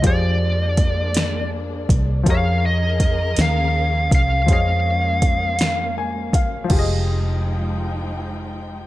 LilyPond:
<<
  \new Staff \with { instrumentName = "Lead electric guitar" } { \time 6/8 \key bes \dorian \tempo 4. = 54 d''2 r4 | f''8 ees''4 f''4 f''8 | f''2 r4 | r2. | }
  \new Staff \with { instrumentName = "Grand piano" } { \time 6/8 \key bes \dorian << { r2. | r2. | r2 aes''8 f''8 | r2. | } \\ { <f f' g' aes' c'' d''>2. | <f f' g' aes' bes' des''>2. | <f f' aes' c'' des'' ees''>2. | <f f' g' aes' ees''>2. | } >> }
  \new Staff \with { instrumentName = "String section" } { \time 6/8 \key bes \dorian <aes bes d'>2. | <f des' aes' bes'>2. | <aes bes>2. | <f aes ees' g''>2. | }
  \new Staff \with { instrumentName = "Fingered electric bass" } { \clef bass \time 6/8 \key bes \dorian f,2~ f,8 c,8 | f,4. ees,4 c,8 | f,2~ f,8 c,8 | f,,2. | }
  \new DrumStaff \with { instrumentName = "Drums" } \drummode { \time 6/8 <hh bd>4 <hh bd>8 <hh sn>4 <hh bd>8 | <hh bd>4 <hh bd>8 <hh sn>4 <hh bd>8 | <hh bd>4 <hh bd>8 <hh sn>4 <hh bd>8 | <cymc bd>4. r4. | }
>>